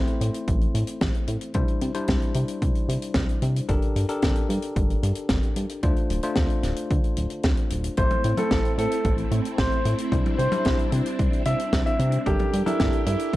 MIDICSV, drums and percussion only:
0, 0, Header, 1, 2, 480
1, 0, Start_track
1, 0, Tempo, 535714
1, 1386, Time_signature, 4, 2, 24, 8
1, 11973, End_track
2, 0, Start_track
2, 0, Title_t, "Drums"
2, 65, Note_on_c, 9, 42, 47
2, 155, Note_off_c, 9, 42, 0
2, 189, Note_on_c, 9, 42, 97
2, 278, Note_off_c, 9, 42, 0
2, 306, Note_on_c, 9, 42, 63
2, 396, Note_off_c, 9, 42, 0
2, 427, Note_on_c, 9, 42, 68
2, 428, Note_on_c, 9, 36, 116
2, 517, Note_off_c, 9, 42, 0
2, 518, Note_off_c, 9, 36, 0
2, 550, Note_on_c, 9, 42, 41
2, 639, Note_off_c, 9, 42, 0
2, 669, Note_on_c, 9, 42, 98
2, 758, Note_off_c, 9, 42, 0
2, 779, Note_on_c, 9, 42, 66
2, 869, Note_off_c, 9, 42, 0
2, 904, Note_on_c, 9, 42, 70
2, 908, Note_on_c, 9, 36, 114
2, 908, Note_on_c, 9, 38, 115
2, 993, Note_off_c, 9, 42, 0
2, 997, Note_off_c, 9, 36, 0
2, 998, Note_off_c, 9, 38, 0
2, 1026, Note_on_c, 9, 42, 48
2, 1115, Note_off_c, 9, 42, 0
2, 1142, Note_on_c, 9, 42, 96
2, 1232, Note_off_c, 9, 42, 0
2, 1263, Note_on_c, 9, 42, 69
2, 1352, Note_off_c, 9, 42, 0
2, 1377, Note_on_c, 9, 42, 65
2, 1388, Note_on_c, 9, 36, 116
2, 1467, Note_off_c, 9, 42, 0
2, 1477, Note_off_c, 9, 36, 0
2, 1505, Note_on_c, 9, 42, 47
2, 1595, Note_off_c, 9, 42, 0
2, 1623, Note_on_c, 9, 42, 89
2, 1713, Note_off_c, 9, 42, 0
2, 1742, Note_on_c, 9, 42, 73
2, 1831, Note_off_c, 9, 42, 0
2, 1860, Note_on_c, 9, 42, 62
2, 1867, Note_on_c, 9, 36, 117
2, 1872, Note_on_c, 9, 38, 109
2, 1950, Note_off_c, 9, 42, 0
2, 1957, Note_off_c, 9, 36, 0
2, 1962, Note_off_c, 9, 38, 0
2, 1988, Note_on_c, 9, 42, 44
2, 2078, Note_off_c, 9, 42, 0
2, 2099, Note_on_c, 9, 42, 100
2, 2189, Note_off_c, 9, 42, 0
2, 2222, Note_on_c, 9, 42, 65
2, 2311, Note_off_c, 9, 42, 0
2, 2347, Note_on_c, 9, 36, 117
2, 2349, Note_on_c, 9, 42, 67
2, 2437, Note_off_c, 9, 36, 0
2, 2439, Note_off_c, 9, 42, 0
2, 2465, Note_on_c, 9, 42, 43
2, 2555, Note_off_c, 9, 42, 0
2, 2592, Note_on_c, 9, 42, 96
2, 2682, Note_off_c, 9, 42, 0
2, 2706, Note_on_c, 9, 42, 68
2, 2795, Note_off_c, 9, 42, 0
2, 2816, Note_on_c, 9, 38, 113
2, 2822, Note_on_c, 9, 42, 60
2, 2827, Note_on_c, 9, 36, 115
2, 2906, Note_off_c, 9, 38, 0
2, 2912, Note_off_c, 9, 42, 0
2, 2917, Note_off_c, 9, 36, 0
2, 2947, Note_on_c, 9, 42, 47
2, 3036, Note_off_c, 9, 42, 0
2, 3063, Note_on_c, 9, 42, 91
2, 3153, Note_off_c, 9, 42, 0
2, 3191, Note_on_c, 9, 42, 65
2, 3281, Note_off_c, 9, 42, 0
2, 3302, Note_on_c, 9, 42, 65
2, 3307, Note_on_c, 9, 36, 120
2, 3392, Note_off_c, 9, 42, 0
2, 3397, Note_off_c, 9, 36, 0
2, 3424, Note_on_c, 9, 42, 44
2, 3514, Note_off_c, 9, 42, 0
2, 3547, Note_on_c, 9, 42, 98
2, 3637, Note_off_c, 9, 42, 0
2, 3663, Note_on_c, 9, 42, 63
2, 3753, Note_off_c, 9, 42, 0
2, 3782, Note_on_c, 9, 42, 64
2, 3787, Note_on_c, 9, 36, 123
2, 3790, Note_on_c, 9, 38, 109
2, 3872, Note_off_c, 9, 42, 0
2, 3877, Note_off_c, 9, 36, 0
2, 3879, Note_off_c, 9, 38, 0
2, 3901, Note_on_c, 9, 42, 49
2, 3991, Note_off_c, 9, 42, 0
2, 4029, Note_on_c, 9, 42, 89
2, 4119, Note_off_c, 9, 42, 0
2, 4141, Note_on_c, 9, 42, 60
2, 4230, Note_off_c, 9, 42, 0
2, 4267, Note_on_c, 9, 36, 122
2, 4268, Note_on_c, 9, 42, 62
2, 4357, Note_off_c, 9, 36, 0
2, 4357, Note_off_c, 9, 42, 0
2, 4391, Note_on_c, 9, 42, 46
2, 4481, Note_off_c, 9, 42, 0
2, 4508, Note_on_c, 9, 42, 101
2, 4598, Note_off_c, 9, 42, 0
2, 4616, Note_on_c, 9, 42, 63
2, 4706, Note_off_c, 9, 42, 0
2, 4740, Note_on_c, 9, 38, 118
2, 4740, Note_on_c, 9, 42, 67
2, 4747, Note_on_c, 9, 36, 119
2, 4829, Note_off_c, 9, 38, 0
2, 4830, Note_off_c, 9, 42, 0
2, 4837, Note_off_c, 9, 36, 0
2, 4864, Note_on_c, 9, 42, 46
2, 4953, Note_off_c, 9, 42, 0
2, 4981, Note_on_c, 9, 42, 101
2, 5071, Note_off_c, 9, 42, 0
2, 5102, Note_on_c, 9, 42, 62
2, 5191, Note_off_c, 9, 42, 0
2, 5221, Note_on_c, 9, 42, 61
2, 5227, Note_on_c, 9, 36, 119
2, 5311, Note_off_c, 9, 42, 0
2, 5317, Note_off_c, 9, 36, 0
2, 5344, Note_on_c, 9, 42, 48
2, 5434, Note_off_c, 9, 42, 0
2, 5465, Note_on_c, 9, 42, 101
2, 5554, Note_off_c, 9, 42, 0
2, 5579, Note_on_c, 9, 42, 66
2, 5669, Note_off_c, 9, 42, 0
2, 5696, Note_on_c, 9, 38, 107
2, 5697, Note_on_c, 9, 42, 65
2, 5707, Note_on_c, 9, 36, 123
2, 5785, Note_off_c, 9, 38, 0
2, 5787, Note_off_c, 9, 42, 0
2, 5797, Note_off_c, 9, 36, 0
2, 5822, Note_on_c, 9, 42, 47
2, 5912, Note_off_c, 9, 42, 0
2, 5942, Note_on_c, 9, 38, 33
2, 5942, Note_on_c, 9, 42, 93
2, 6031, Note_off_c, 9, 38, 0
2, 6032, Note_off_c, 9, 42, 0
2, 6060, Note_on_c, 9, 42, 63
2, 6150, Note_off_c, 9, 42, 0
2, 6188, Note_on_c, 9, 36, 122
2, 6191, Note_on_c, 9, 42, 64
2, 6277, Note_off_c, 9, 36, 0
2, 6280, Note_off_c, 9, 42, 0
2, 6306, Note_on_c, 9, 42, 44
2, 6396, Note_off_c, 9, 42, 0
2, 6421, Note_on_c, 9, 42, 89
2, 6510, Note_off_c, 9, 42, 0
2, 6540, Note_on_c, 9, 42, 57
2, 6630, Note_off_c, 9, 42, 0
2, 6660, Note_on_c, 9, 42, 65
2, 6666, Note_on_c, 9, 38, 116
2, 6667, Note_on_c, 9, 36, 114
2, 6749, Note_off_c, 9, 42, 0
2, 6755, Note_off_c, 9, 38, 0
2, 6757, Note_off_c, 9, 36, 0
2, 6783, Note_on_c, 9, 42, 46
2, 6873, Note_off_c, 9, 42, 0
2, 6902, Note_on_c, 9, 42, 95
2, 6991, Note_off_c, 9, 42, 0
2, 7023, Note_on_c, 9, 42, 67
2, 7113, Note_off_c, 9, 42, 0
2, 7141, Note_on_c, 9, 42, 66
2, 7148, Note_on_c, 9, 36, 116
2, 7230, Note_off_c, 9, 42, 0
2, 7237, Note_off_c, 9, 36, 0
2, 7261, Note_on_c, 9, 42, 43
2, 7265, Note_on_c, 9, 48, 73
2, 7350, Note_off_c, 9, 42, 0
2, 7354, Note_off_c, 9, 48, 0
2, 7382, Note_on_c, 9, 42, 82
2, 7472, Note_off_c, 9, 42, 0
2, 7502, Note_on_c, 9, 42, 66
2, 7503, Note_on_c, 9, 48, 69
2, 7592, Note_off_c, 9, 42, 0
2, 7593, Note_off_c, 9, 48, 0
2, 7624, Note_on_c, 9, 42, 56
2, 7625, Note_on_c, 9, 38, 105
2, 7627, Note_on_c, 9, 36, 115
2, 7714, Note_off_c, 9, 38, 0
2, 7714, Note_off_c, 9, 42, 0
2, 7717, Note_off_c, 9, 36, 0
2, 7750, Note_on_c, 9, 42, 42
2, 7840, Note_off_c, 9, 42, 0
2, 7870, Note_on_c, 9, 42, 86
2, 7960, Note_off_c, 9, 42, 0
2, 7988, Note_on_c, 9, 42, 57
2, 8077, Note_off_c, 9, 42, 0
2, 8104, Note_on_c, 9, 42, 60
2, 8108, Note_on_c, 9, 36, 117
2, 8193, Note_off_c, 9, 42, 0
2, 8197, Note_off_c, 9, 36, 0
2, 8223, Note_on_c, 9, 42, 47
2, 8312, Note_off_c, 9, 42, 0
2, 8345, Note_on_c, 9, 42, 90
2, 8434, Note_off_c, 9, 42, 0
2, 8468, Note_on_c, 9, 42, 56
2, 8557, Note_off_c, 9, 42, 0
2, 8587, Note_on_c, 9, 38, 123
2, 8588, Note_on_c, 9, 36, 112
2, 8590, Note_on_c, 9, 42, 60
2, 8677, Note_off_c, 9, 36, 0
2, 8677, Note_off_c, 9, 38, 0
2, 8680, Note_off_c, 9, 42, 0
2, 8707, Note_on_c, 9, 42, 39
2, 8796, Note_off_c, 9, 42, 0
2, 8827, Note_on_c, 9, 42, 89
2, 8917, Note_off_c, 9, 42, 0
2, 8945, Note_on_c, 9, 42, 66
2, 9035, Note_off_c, 9, 42, 0
2, 9068, Note_on_c, 9, 36, 111
2, 9075, Note_on_c, 9, 42, 66
2, 9158, Note_off_c, 9, 36, 0
2, 9165, Note_off_c, 9, 42, 0
2, 9190, Note_on_c, 9, 42, 41
2, 9194, Note_on_c, 9, 48, 79
2, 9279, Note_off_c, 9, 42, 0
2, 9283, Note_off_c, 9, 48, 0
2, 9311, Note_on_c, 9, 42, 85
2, 9400, Note_off_c, 9, 42, 0
2, 9424, Note_on_c, 9, 48, 87
2, 9428, Note_on_c, 9, 42, 59
2, 9514, Note_off_c, 9, 48, 0
2, 9518, Note_off_c, 9, 42, 0
2, 9539, Note_on_c, 9, 42, 66
2, 9548, Note_on_c, 9, 36, 111
2, 9553, Note_on_c, 9, 38, 98
2, 9629, Note_off_c, 9, 42, 0
2, 9638, Note_off_c, 9, 36, 0
2, 9642, Note_off_c, 9, 38, 0
2, 9668, Note_on_c, 9, 42, 43
2, 9757, Note_off_c, 9, 42, 0
2, 9785, Note_on_c, 9, 42, 84
2, 9874, Note_off_c, 9, 42, 0
2, 9907, Note_on_c, 9, 42, 63
2, 9996, Note_off_c, 9, 42, 0
2, 10028, Note_on_c, 9, 36, 112
2, 10029, Note_on_c, 9, 42, 58
2, 10118, Note_off_c, 9, 36, 0
2, 10118, Note_off_c, 9, 42, 0
2, 10152, Note_on_c, 9, 42, 45
2, 10242, Note_off_c, 9, 42, 0
2, 10262, Note_on_c, 9, 42, 93
2, 10352, Note_off_c, 9, 42, 0
2, 10389, Note_on_c, 9, 42, 56
2, 10478, Note_off_c, 9, 42, 0
2, 10507, Note_on_c, 9, 42, 66
2, 10508, Note_on_c, 9, 36, 112
2, 10509, Note_on_c, 9, 38, 111
2, 10597, Note_off_c, 9, 42, 0
2, 10598, Note_off_c, 9, 36, 0
2, 10599, Note_off_c, 9, 38, 0
2, 10631, Note_on_c, 9, 42, 42
2, 10721, Note_off_c, 9, 42, 0
2, 10746, Note_on_c, 9, 42, 90
2, 10836, Note_off_c, 9, 42, 0
2, 10859, Note_on_c, 9, 42, 63
2, 10948, Note_off_c, 9, 42, 0
2, 10988, Note_on_c, 9, 36, 109
2, 10988, Note_on_c, 9, 42, 57
2, 11077, Note_off_c, 9, 42, 0
2, 11078, Note_off_c, 9, 36, 0
2, 11103, Note_on_c, 9, 42, 40
2, 11109, Note_on_c, 9, 48, 80
2, 11193, Note_off_c, 9, 42, 0
2, 11199, Note_off_c, 9, 48, 0
2, 11230, Note_on_c, 9, 42, 97
2, 11319, Note_off_c, 9, 42, 0
2, 11348, Note_on_c, 9, 48, 79
2, 11354, Note_on_c, 9, 42, 64
2, 11438, Note_off_c, 9, 48, 0
2, 11443, Note_off_c, 9, 42, 0
2, 11466, Note_on_c, 9, 42, 59
2, 11468, Note_on_c, 9, 36, 114
2, 11468, Note_on_c, 9, 38, 115
2, 11556, Note_off_c, 9, 42, 0
2, 11557, Note_off_c, 9, 38, 0
2, 11558, Note_off_c, 9, 36, 0
2, 11582, Note_on_c, 9, 42, 44
2, 11672, Note_off_c, 9, 42, 0
2, 11705, Note_on_c, 9, 42, 98
2, 11795, Note_off_c, 9, 42, 0
2, 11822, Note_on_c, 9, 42, 59
2, 11911, Note_off_c, 9, 42, 0
2, 11973, End_track
0, 0, End_of_file